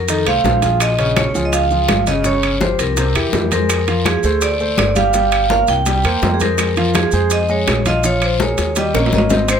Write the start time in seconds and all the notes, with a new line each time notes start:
Already playing: F2
0.07 D#3 D#4 A4 D#5, high bongo, high conga, high timbale, long guiro, maracas
0.26 C2 A3 A4 C5 F5, high bongo, high conga, high timbale, claves, maracas
0.44 A#1 A3 A4 C5, high bongo, low bongo, high conga, low timbale, short guiro, maracas
0.62 F3 F4 G#4, high bongo, high conga, high timbale, short guiro, maracas
0.80 D#5, high bongo, high conga, high timbale, long guiro, claves, maracas
0.99 C#3 C#4 C#5, high conga, high timbale, maracas
1.16 C#5, high bongo, high conga, high timbale, low timbale, short guiro, claves, maracas
1.34 C#2 F3 F4 G#4, high conga, short guiro, maracas
1.45 D#5
1.52 F5, high bongo, high conga, high timbale, long guiro, maracas
1.70 F3 F4 G#4, high conga, maracas
1.88 G1, high bongo, low bongo, high conga, high timbale, low timbale, short guiro, claves, maracas
2.07 C#3 C#4 C#5 D#5, high conga, high timbale, short guiro, maracas
2.24 C#3 C#4 C#5, high bongo, high conga, long guiro, maracas
2.43 high conga, high timbale, claves, maracas
2.61 F3 F4 G4 C5, high bongo, high conga, low timbale, short guiro, maracas
2.79 C2 A#4, high bongo, high conga, high timbale, short guiro, maracas
2.97 C3 C4 C5, high bongo, high conga, high timbale, long guiro, maracas
3.15 E2 E3 E4 G4, high bongo, high conga, high timbale, claves, maracas
3.33 F2 E3 E4 G4, high bongo, low bongo, high conga, low timbale, short guiro, maracas
3.51 G#3 G#4 A#4 C5, high bongo, high conga, high timbale, short guiro, maracas
3.69 high bongo, high conga, high timbale, long guiro, claves, maracas
3.87 F3 F4 F5, high conga, high timbale, maracas
4.05 G#4, high bongo, high conga, high timbale, low timbale, short guiro, claves, maracas
4.23 D2 A3 A4 C5, high conga, short guiro, maracas
4.41 D5, high bongo, high conga, high timbale, long guiro, maracas
4.60 A3 A4 C5, high conga, maracas
4.78 G1 D5, high bongo, low bongo, high conga, high timbale, low timbale, short guiro, claves, maracas
4.89 D5
4.96 G3 G4 F5 G5, high conga, high timbale, short guiro, maracas
5.13 G3 G4 G5, high bongo, high conga, long guiro, maracas
5.31 high conga, high timbale, claves, maracas
5.50 A#3 A#4 C#5 F5, high bongo, high conga, low timbale, short guiro, maracas
5.67 C2 G5, high bongo, high conga, high timbale, short guiro, maracas
5.86 G3 G4 G5, high bongo, high conga, high timbale, long guiro, maracas
6.04 E2 A#3 A#4 C5, high bongo, high conga, high timbale, claves, maracas
6.21 F2 A#3 A#4 C5, high bongo, low bongo, high conga, low timbale, short guiro, maracas
6.34 G#4
6.40 G#3 G#4 A#4 C5, high bongo, high conga, high timbale, short guiro, maracas
6.58 high bongo, high conga, high timbale, long guiro, claves, maracas
6.76 F3 F4 F5, high conga, high timbale, maracas
6.94 G#4, high bongo, high conga, high timbale, low timbale, short guiro, claves, maracas
7.11 F2 G#3 G#4 C5, high conga, short guiro, maracas
7.30 D#5, high bongo, high conga, high timbale, long guiro, maracas
7.48 G#3 G#4 C#5 D#5, high conga, maracas
7.67 A#1, high bongo, low bongo, high conga, high timbale, low timbale, short guiro, claves, maracas
7.86 F3 F4 D#5 F5, high conga, high timbale, short guiro, maracas
8.03 F3 F4 C#5 F5, high bongo, high conga, long guiro, maracas
8.22 C5, high conga, high timbale, claves, maracas
8.40 G#3 G#4 A#4 C#5, high bongo, high conga, low timbale, short guiro, maracas
8.58 D#2, high bongo, high conga, high timbale, short guiro, maracas
8.76 G3 G4 D#5 G5, high bongo, high conga, high timbale, long guiro, maracas
8.94 A#1 A#3 A#4 C#5, low bongo, high conga, high timbale, claves, maracas
9.06 low timbale
9.11 G#1 A#3 A#4 C#5 D#5, low bongo, high conga, short guiro, maracas
9.18 low timbale
9.30 C4 C5 D#5, low bongo, high conga, low timbale, short guiro, maracas
9.48 C4 C5 D#5, high bongo, high conga, high timbale, long guiro, claves, maracas